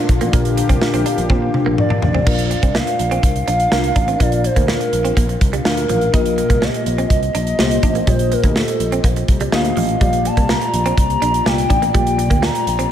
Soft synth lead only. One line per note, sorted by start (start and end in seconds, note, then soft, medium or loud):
1.79 2.01 D5 loud
2.03 2.25 D5 loud
2.27 2.77 D5 loud
2.76 3.23 F5 loud
3.24 4.23 F5 loud
4.21 4.47 D5 loud
4.46 4.69 C5 medium
4.70 5.38 A#4 medium
5.67 6.11 A#4 medium
6.15 6.65 A#4 loud
6.63 7.11 D#5 loud
7.12 8.10 D#5 loud
8.09 8.34 C5 loud
8.33 8.58 A#4 medium
8.57 9.29 A4 medium
9.54 9.98 F5 loud
10.02 10.28 F5 loud
10.26 10.50 A5 loud
10.50 10.95 A#5 loud
10.99 11.48 A#5 loud
11.47 11.95 G5 loud
11.96 12.46 G5 loud
12.44 12.92 A#5 loud